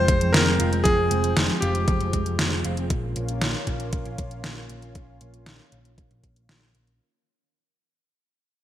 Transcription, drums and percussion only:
0.08 kick, closed hi-hat
0.21 closed hi-hat
0.34 snare, closed hi-hat
0.60 closed hi-hat
0.73 closed hi-hat
0.85 kick, closed hi-hat
1.11 closed hi-hat
1.24 closed hi-hat
1.37 snare, closed hi-hat
1.62 closed hi-hat
1.75 closed hi-hat
1.88 kick, closed hi-hat
2.01 closed hi-hat
2.13 kick, closed hi-hat
2.26 closed hi-hat
2.39 snare, closed hi-hat
2.65 closed hi-hat
2.77 closed hi-hat
2.90 kick, closed hi-hat
3.16 closed hi-hat
3.28 closed hi-hat
3.42 snare, closed hi-hat
3.67 kick, closed hi-hat
3.80 closed hi-hat
3.93 kick, closed hi-hat
4.05 closed hi-hat
4.18 kick, closed hi-hat
4.31 closed hi-hat
4.44 snare, closed hi-hat
4.70 closed hi-hat
4.82 closed hi-hat
4.95 kick, closed hi-hat
5.21 closed hi-hat
5.34 closed hi-hat
5.46 snare, closed hi-hat
5.72 closed hi-hat
5.85 closed hi-hat
5.98 kick, closed hi-hat
6.11 closed hi-hat
6.24 kick, closed hi-hat
6.36 closed hi-hat
6.49 snare, closed hi-hat
6.75 closed hi-hat
6.87 closed hi-hat

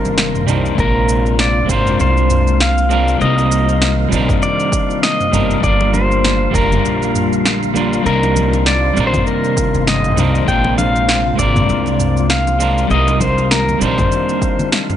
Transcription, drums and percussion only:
0.05 shaker
0.18 snare, shaker
0.35 mid tom, shaker
0.48 mid tom, shaker
0.65 shaker
0.78 kick, shaker
1.09 shaker
1.26 shaker
1.39 snare, shaker
1.69 kick, shaker
1.87 mid tom, shaker
2.00 shaker
2.17 shaker
2.30 mid tom, shaker
2.47 shaker
2.60 snare, shaker
2.78 shaker
2.91 shaker
3.08 shaker
3.21 shaker
3.38 shaker
3.51 shaker
3.69 shaker
3.82 snare, shaker
4.12 shaker
4.29 kick, mid tom, shaker
4.42 shaker
4.60 shaker
4.72 kick, shaker
4.90 shaker
5.03 snare, shaker
5.20 mid tom, shaker
5.33 mid tom, shaker
5.51 shaker
5.63 kick, shaker
5.81 muted conga
5.94 high conga, shaker
6.11 shaker
6.24 snare, shaker
6.54 kick, shaker
6.72 mid tom, low conga, shaker
6.85 shaker
7.02 muted conga, shaker
7.15 mid tom, shaker
7.33 shaker
7.46 snare, shaker
7.63 muted conga, shaker
7.76 high conga, shaker
7.93 shaker
8.06 shaker
8.23 muted conga, shaker
8.36 high conga, shaker
8.53 muted conga, shaker
8.66 snare, shaker
8.97 shaker
9.14 kick, mid tom, low conga, shaker
9.27 shaker
9.44 shaker
9.57 kick, shaker
9.74 shaker
9.87 snare, shaker
10.04 mid tom, muted conga, shaker
10.17 mid tom, high conga, shaker
10.35 shaker
10.48 kick, shaker
10.64 muted conga
10.78 high conga, shaker
10.96 shaker
11.09 snare, shaker
11.39 kick, shaker
11.56 mid tom, low conga, shaker
11.69 shaker
11.86 muted conga, shaker
12.00 mid tom, shaker
12.17 shaker
12.30 snare, shaker
12.47 muted conga, shaker
12.60 high conga, shaker
12.78 shaker
12.90 shaker
13.08 muted conga, shaker
13.21 kick, high conga, shaker
13.38 muted conga, shaker
13.51 snare, shaker
13.69 low conga, shaker
13.81 shaker
13.98 kick, mid tom, low conga, shaker
14.12 shaker
14.29 shaker
14.42 kick, shaker
14.59 low conga, shaker
14.72 snare, shaker
14.90 mid tom, muted conga, shaker

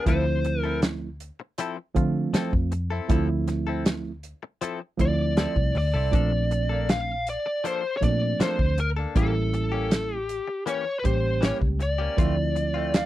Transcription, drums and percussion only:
0.06 kick, closed hi-hat
0.44 closed hi-hat
0.82 snare, closed hi-hat
1.20 closed hi-hat
1.58 closed hi-hat
1.96 kick, closed hi-hat
2.34 snare, closed hi-hat
2.53 kick
2.72 closed hi-hat
3.09 kick, closed hi-hat
3.48 snare, closed hi-hat
3.86 snare, closed hi-hat
4.23 closed hi-hat
4.61 closed hi-hat
4.99 kick, closed hi-hat
5.37 snare, closed hi-hat
5.56 kick
5.75 open hi-hat
6.13 kick, closed hi-hat
6.51 closed hi-hat
6.89 snare, closed hi-hat
7.27 closed hi-hat
7.65 closed hi-hat
8.02 kick, closed hi-hat
8.40 snare, closed hi-hat
8.59 kick
8.78 closed hi-hat
9.16 kick, closed hi-hat
9.54 closed hi-hat
9.91 snare, closed hi-hat
10.29 closed hi-hat
10.67 closed hi-hat
11.05 kick, closed hi-hat
11.42 snare, closed hi-hat
11.62 kick
11.80 closed hi-hat
12.18 kick, closed hi-hat
12.56 closed hi-hat
12.94 snare, closed hi-hat

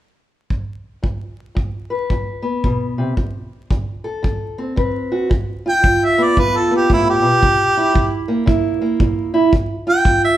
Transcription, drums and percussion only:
0.50 kick
1.04 kick
1.57 kick
2.10 kick
2.64 kick
3.17 kick
3.71 kick
4.24 kick
4.77 kick
5.31 kick
5.84 kick
6.37 kick
6.90 kick
7.43 kick
7.95 kick
8.47 kick
9.00 kick
9.53 kick
10.05 kick

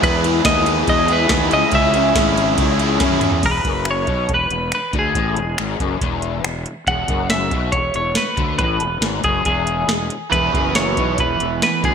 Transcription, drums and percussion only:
0.03 kick, ride
0.24 ride
0.45 kick, snare, ride
0.66 ride
0.87 kick, ride
1.08 ride
1.29 kick, snare, ride
1.51 ride
1.72 kick, ride
1.94 ride
2.15 kick, snare, ride
2.37 ride
2.58 kick, ride
2.79 ride
3.00 kick, snare, ride
3.11 high tom
3.21 mid tom, ride
3.32 floor tom
3.43 kick, closed hi-hat, crash
3.65 kick, closed hi-hat
3.85 finger snap, closed hi-hat
4.07 kick, closed hi-hat
4.29 kick, closed hi-hat
4.51 closed hi-hat
4.72 finger snap, closed hi-hat
4.93 kick, closed hi-hat
5.15 kick, closed hi-hat
5.37 closed hi-hat
5.58 finger snap, closed hi-hat
5.80 kick, closed hi-hat
6.01 kick, closed hi-hat
6.22 closed hi-hat
6.44 finger snap, closed hi-hat
6.66 closed hi-hat
6.87 kick, closed hi-hat
7.08 kick, closed hi-hat
7.30 snare, closed hi-hat
7.51 kick, closed hi-hat
7.72 kick, closed hi-hat
7.94 closed hi-hat
8.15 snare, closed hi-hat
8.37 kick, closed hi-hat
8.59 kick, closed hi-hat
8.80 closed hi-hat
9.02 snare, closed hi-hat
9.24 kick, closed hi-hat
9.45 kick, closed hi-hat
9.67 closed hi-hat
9.89 snare, closed hi-hat
10.10 closed hi-hat
10.32 kick, closed hi-hat
10.54 kick, closed hi-hat
10.75 snare, closed hi-hat
10.97 kick, closed hi-hat
11.18 kick, closed hi-hat
11.40 closed hi-hat
11.62 snare, closed hi-hat
11.84 kick, snare, closed hi-hat

